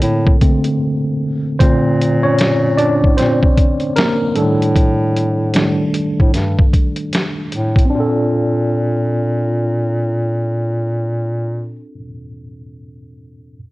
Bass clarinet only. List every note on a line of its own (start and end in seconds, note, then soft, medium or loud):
0.02 0.34 A2 loud
1.60 2.99 A#2 loud
3.04 3.16 A2 medium
3.18 3.50 A#2 medium
4.37 5.87 A2 loud
6.20 6.32 A2 medium
6.34 6.66 G2 medium
7.53 7.85 A2 medium
7.92 11.83 A#2 medium